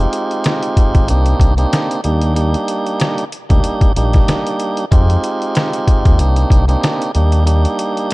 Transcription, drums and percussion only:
0.13 closed hi-hat
0.31 closed hi-hat
0.44 cross-stick, snare, closed hi-hat
0.63 closed hi-hat
0.77 kick, closed hi-hat
0.95 kick, closed hi-hat
1.08 closed hi-hat
1.26 closed hi-hat
1.40 kick, closed hi-hat
1.58 closed hi-hat
1.73 cross-stick, snare, closed hi-hat
1.91 closed hi-hat
2.04 closed hi-hat
2.21 closed hi-hat
2.36 closed hi-hat
2.54 closed hi-hat
2.68 closed hi-hat
2.86 closed hi-hat
3.00 cross-stick, snare, closed hi-hat
3.18 closed hi-hat
3.32 closed hi-hat
3.50 kick, closed hi-hat
3.64 closed hi-hat
3.81 kick, closed hi-hat
3.96 closed hi-hat
4.13 kick, snare, closed hi-hat
4.28 cross-stick, snare, closed hi-hat
4.47 closed hi-hat
4.60 closed hi-hat
4.77 closed hi-hat
4.92 kick, closed hi-hat
5.10 closed hi-hat
5.24 closed hi-hat
5.42 closed hi-hat
5.55 cross-stick, snare, closed hi-hat
5.73 closed hi-hat
5.88 kick, closed hi-hat
6.05 kick, closed hi-hat
6.19 closed hi-hat
6.36 closed hi-hat
6.50 kick, closed hi-hat
6.69 closed hi-hat
6.83 cross-stick, snare, closed hi-hat
7.02 closed hi-hat
7.15 closed hi-hat
7.32 closed hi-hat
7.47 closed hi-hat
7.65 closed hi-hat
7.79 closed hi-hat
7.97 closed hi-hat

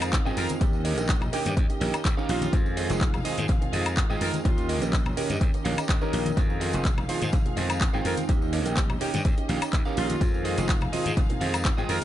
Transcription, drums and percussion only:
0.02 closed hi-hat, tambourine, high woodblock
0.13 kick, clap, closed hi-hat
0.26 tambourine
0.37 open hi-hat
0.49 closed hi-hat, tambourine, high conga
0.61 kick, closed hi-hat, tambourine
0.73 tambourine
0.85 open hi-hat
0.98 closed hi-hat, tambourine
1.09 kick, clap, closed hi-hat
1.21 tambourine, low conga, high woodblock
1.33 open hi-hat
1.45 closed hi-hat, tambourine, high conga
1.57 kick, closed hi-hat, tambourine
1.70 closed hi-hat, tambourine
1.81 open hi-hat, high conga
1.94 closed hi-hat, tambourine, high woodblock
2.05 kick, clap, closed hi-hat, tambourine
2.18 tambourine
2.29 open hi-hat
2.42 closed hi-hat, tambourine, high conga
2.53 kick, closed hi-hat, tambourine
2.66 tambourine
2.77 open hi-hat
2.90 closed hi-hat, tambourine
3.01 kick, clap, closed hi-hat
3.14 tambourine, low conga, high woodblock
3.25 open hi-hat
3.38 closed hi-hat, tambourine, high conga
3.48 kick, closed hi-hat, tambourine
3.61 closed hi-hat, tambourine, low conga
3.73 open hi-hat, high conga
3.86 closed hi-hat, tambourine, high woodblock
3.97 kick, clap, closed hi-hat, tambourine
4.10 tambourine
4.21 open hi-hat
4.34 closed hi-hat, tambourine, high conga
4.45 kick, closed hi-hat, tambourine
4.58 closed hi-hat, tambourine
4.69 open hi-hat
4.82 closed hi-hat, tambourine
4.93 kick, clap, closed hi-hat, tambourine
5.06 tambourine, low conga, high woodblock
5.17 open hi-hat
5.29 closed hi-hat, tambourine, high conga
5.41 kick, closed hi-hat
5.54 closed hi-hat, tambourine
5.65 open hi-hat, high conga
5.78 closed hi-hat, tambourine, high woodblock
5.89 kick, clap, closed hi-hat
6.01 tambourine
6.13 open hi-hat
6.26 closed hi-hat, tambourine, high conga
6.37 kick, closed hi-hat, tambourine
6.50 tambourine
6.61 open hi-hat
6.73 closed hi-hat, tambourine
6.85 kick, clap, closed hi-hat, tambourine
6.98 tambourine, low conga, high woodblock
7.09 open hi-hat
7.22 closed hi-hat, tambourine, high conga
7.32 kick, closed hi-hat, tambourine
7.45 closed hi-hat, tambourine, low conga
7.57 open hi-hat, high conga
7.70 closed hi-hat, tambourine, high woodblock
7.81 kick, clap, closed hi-hat, tambourine
7.94 tambourine
8.05 open hi-hat
8.17 closed hi-hat, tambourine, high conga
8.29 kick, closed hi-hat, tambourine
8.42 tambourine
8.53 open hi-hat
8.66 closed hi-hat, tambourine
8.77 kick, clap, closed hi-hat, tambourine
8.90 tambourine, low conga, high woodblock
9.01 open hi-hat
9.14 closed hi-hat, tambourine, high conga
9.25 kick, closed hi-hat
9.38 closed hi-hat, tambourine
9.49 open hi-hat, high conga
9.62 closed hi-hat, tambourine, high woodblock
9.73 kick, clap, closed hi-hat, tambourine
9.85 tambourine
9.97 open hi-hat
10.09 closed hi-hat, tambourine, high conga
10.21 kick, closed hi-hat, tambourine
10.34 tambourine
10.45 open hi-hat
10.58 closed hi-hat, tambourine
10.69 kick, clap, closed hi-hat, tambourine
10.81 tambourine, low conga, high woodblock
10.93 open hi-hat
11.06 closed hi-hat, tambourine, high conga
11.17 kick, closed hi-hat, tambourine
11.29 closed hi-hat, tambourine, low conga
11.41 open hi-hat, high conga
11.54 closed hi-hat, tambourine, high woodblock
11.64 kick, clap, closed hi-hat, tambourine
11.78 tambourine
11.89 open hi-hat

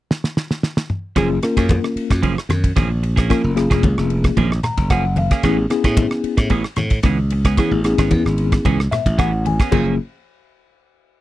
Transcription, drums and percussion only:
0.11 snare
0.24 snare
0.37 snare
0.51 snare
0.63 snare
0.77 snare
0.90 mid tom
1.16 kick, cross-stick, ride, muted conga
1.43 cross-stick, ride, muted conga
1.57 kick, cross-stick, ride
1.69 kick, ride, high conga
1.84 cross-stick
1.97 ride
2.10 kick, cross-stick, ride
2.23 kick, ride, muted conga
2.38 cross-stick
2.50 cross-stick, ride, high conga
2.64 kick, ride
2.76 kick, cross-stick, ride, muted conga, high conga
3.03 ride
3.17 kick, cross-stick, ride
3.30 kick, cross-stick, ride, muted conga
3.57 cross-stick, ride, muted conga
3.71 kick, cross-stick, ride
3.83 kick, ride, high conga
3.98 cross-stick
4.10 ride
4.24 kick, cross-stick, ride
4.37 kick, ride, muted conga, high conga, low conga
4.52 cross-stick
4.63 cross-stick, ride, low conga
4.77 kick, ride
4.90 kick, cross-stick, ride, muted conga
5.16 ride, high conga
5.31 kick, cross-stick, ride
5.43 kick, cross-stick, ride, muted conga
5.70 cross-stick, ride, muted conga
5.84 kick, cross-stick, ride
5.97 kick, ride, high conga
6.11 cross-stick
6.24 ride
6.37 kick, cross-stick, ride
6.50 kick, ride, muted conga
6.64 cross-stick
6.76 cross-stick, ride, high conga
6.90 kick, ride
7.03 kick, cross-stick, ride, muted conga, high conga
7.30 ride
7.45 kick, cross-stick, ride
7.57 kick, cross-stick, ride, muted conga
7.84 cross-stick, ride, muted conga
7.98 kick, cross-stick, ride
8.11 kick, ride, high conga
8.26 cross-stick
8.38 ride
8.52 kick, cross-stick, ride
8.65 kick, ride, muted conga, high conga, low conga
8.80 cross-stick
8.92 cross-stick, ride, low conga
9.06 kick, ride
9.19 kick, cross-stick, ride, muted conga
9.46 ride, high conga
9.60 kick, cross-stick, ride
9.72 kick, crash, muted conga

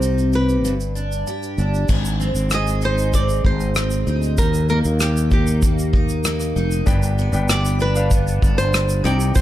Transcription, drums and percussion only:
0.02 shaker
0.18 shaker
0.33 shaker
0.49 shaker
0.65 shaker
0.80 shaker
0.96 shaker
1.12 shaker
1.27 shaker
1.43 shaker
1.58 shaker
1.74 shaker
1.88 kick, crash, shaker
2.05 shaker
2.21 shaker
2.35 shaker
2.50 cross-stick, shaker
2.67 shaker
2.82 shaker
2.98 shaker
3.13 kick, shaker
3.29 shaker
3.45 kick
3.60 shaker
3.75 cross-stick, shaker
3.91 shaker
4.07 shaker
4.22 shaker
4.38 kick, shaker
4.53 shaker
4.69 shaker
4.84 shaker
5.00 cross-stick, shaker
5.16 shaker
5.31 kick, shaker
5.47 shaker
5.62 kick, shaker
5.79 shaker
5.93 kick
6.09 shaker
6.24 cross-stick, shaker
6.40 cross-stick, shaker
6.57 shaker
6.71 shaker
6.87 kick, shaker
7.03 shaker
7.18 shaker
7.33 shaker
7.49 cross-stick, shaker
7.65 shaker
7.80 shaker
7.96 shaker
8.11 kick, shaker
8.28 shaker
8.42 kick, shaker
8.58 shaker
8.73 cross-stick, shaker
8.89 shaker
9.04 shaker
9.06 shaker
9.20 shaker
9.35 kick, shaker

